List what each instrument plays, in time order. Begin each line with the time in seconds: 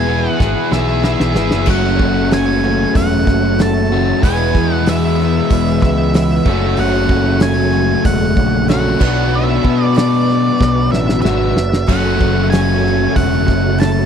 Already playing: picked electric bass E1, steel-string acoustic guitar B3 E4 G#4 B4, lead electric guitar G#5
0.07 overdriven electric guitar E2 B2 E3 B3 E4 G#4
0.30 lead electric guitar F#5
0.38 picked electric bass G#1, overdriven electric guitar E2 B2 E3 B3 E4 G#4, steel-string acoustic guitar B3 E4 G#4, kick, snare
0.43 steel-string acoustic guitar B4
0.71 picked electric bass B1, overdriven electric guitar E2 B2 E3 B3 E4 G#4, steel-string acoustic guitar E4 G#4 B4, lead electric guitar E5, snare
1.02 overdriven electric guitar E2 B2 E3 B3 E4 G#4, steel-string acoustic guitar B3 E4 G#4 B4, lead electric guitar E5, snare
1.20 picked electric bass B1, snare
1.34 picked electric bass G#1, overdriven electric guitar E2 B2 E3 B3 E4 G#4, steel-string acoustic guitar E4 G#4 B4, snare
1.51 picked electric bass F#1, snare
1.66 picked electric bass F#1, overdriven electric guitar F#2 C#3 F#3 A3 C#4 F#4, steel-string acoustic guitar F#3 A3 C#4 F#4 A4, tonewheel organ F#4 A4 C#5, kick, crash
1.70 lead electric guitar F#5
1.99 picked electric bass F#1, steel-string acoustic guitar C#4 F#4 A4, kick
2.31 steel-string acoustic guitar F#3 A3 C#4 F#4 A4, lead electric guitar G#5, snare, open hi-hat
2.64 steel-string acoustic guitar C#4 F#4 A4
2.95 picked electric bass E1, steel-string acoustic guitar A3 C#4 F#4 A4, lead electric guitar F#5, kick, open hi-hat
3.27 picked electric bass F#1, steel-string acoustic guitar C#4 F#4 A4, kick, snare
3.59 steel-string acoustic guitar F#3 A3 C#4 F#4 A4, lead electric guitar A5, snare, open hi-hat
3.92 overdriven electric guitar F#2 C#3 F#3 A3 C#4 F#4
4.23 picked electric bass E1, overdriven electric guitar E2 B2 E3 G#3 B3 G#4, steel-string acoustic guitar E3 B3 E4 G#4 B4, tonewheel organ E4 G#4 B4, lead electric guitar G#5, kick, open hi-hat
4.54 picked electric bass E2, steel-string acoustic guitar E4 G#4 B4, kick
4.74 lead electric guitar F#5
4.86 steel-string acoustic guitar E3 B3 E4 G#4 B4, lead electric guitar E5, snare, open hi-hat
5.19 steel-string acoustic guitar E4 G#4 B4, snare
5.50 picked electric bass E1, steel-string acoustic guitar B3 E4 G#4 B4, kick, open hi-hat
5.82 picked electric bass C#2, steel-string acoustic guitar E4 G#4 B4, lead electric guitar E5, kick, snare
6.14 steel-string acoustic guitar E3 B3 E4 G#4 B4, lead electric guitar E5, snare, open hi-hat
6.44 picked electric bass F#1, overdriven electric guitar F#2, steel-string acoustic guitar C#4 F#4 A4, tonewheel organ F#4 A4 C#5, kick
6.48 overdriven electric guitar C#3 F#3 A3 C#4 F#4, steel-string acoustic guitar F#3 A3
6.77 picked electric bass F#1, lead electric guitar F#5, open hi-hat
7.09 picked electric bass F#1, steel-string acoustic guitar C#4 F#4 A4, kick
7.40 steel-string acoustic guitar F#3 A3 C#4 F#4 A4, lead electric guitar G#5, snare, open hi-hat
7.73 steel-string acoustic guitar C#4 F#4 A4
8.04 picked electric bass E1, steel-string acoustic guitar A3 C#4 F#4 A4, lead electric guitar F#5, kick, open hi-hat
8.35 picked electric bass A#1, steel-string acoustic guitar C#4 F#4 A4, kick
8.68 overdriven electric guitar F#2 C#3 F#3, steel-string acoustic guitar F#3 A3 C#4 F#4 A4, lead electric guitar F#5, snare, open hi-hat
8.72 overdriven electric guitar A3 C#4 F#4
8.97 picked electric bass B1, steel-string acoustic guitar B2 F#3 B3 D4 F#4 B4, overdriven electric guitar B2, tonewheel organ F#4 B4 D5, kick, crash
9.02 overdriven electric guitar F#3 B3 D4 F#4
9.35 lead electric guitar E5
9.63 picked electric bass B2, steel-string acoustic guitar B3 D4 F#4 B4, kick
9.84 lead electric guitar D5
9.94 steel-string acoustic guitar B2 F#3 B3 D4 F#4 B4, lead electric guitar D5, snare, open hi-hat
10.26 steel-string acoustic guitar B3 D4 F#4 B4, snare
10.58 picked electric bass B1, steel-string acoustic guitar B3 D4 F#4 B4, kick, snare
10.89 picked electric bass A1, steel-string acoustic guitar B3 D4 F#4 B4, lead electric guitar E5
10.94 snare
11.09 snare
11.22 picked electric bass G#1, steel-string acoustic guitar B2 F#3 B3 D4 F#4 B4, overdriven electric guitar B2 F#3, lead electric guitar E5, snare
11.26 overdriven electric guitar B3 D4 F#4
11.55 picked electric bass F#1, snare
11.73 snare
11.86 picked electric bass F#1, overdriven electric guitar F#2 C#3 F#3 A3, steel-string acoustic guitar F#3 A3 C#4 F#4 A4, tonewheel organ F#4 A4 C#5, lead electric guitar F#5, kick, open hi-hat, crash
11.91 overdriven electric guitar C#4 F#4
12.19 picked electric bass F#1, steel-string acoustic guitar C#4 F#4 A4, kick
12.50 steel-string acoustic guitar F#3 A3 C#4 F#4 A4, lead electric guitar G#5, snare, open hi-hat
12.84 steel-string acoustic guitar C#4 F#4 A4, snare
13.16 picked electric bass E1, steel-string acoustic guitar A3 C#4 F#4 A4, lead electric guitar F#5, kick, open hi-hat
13.48 picked electric bass F#1, steel-string acoustic guitar C#4 F#4 A4, kick, snare
13.78 steel-string acoustic guitar F#3 A3 C#4 F#4 A4, lead electric guitar A5, snare, open hi-hat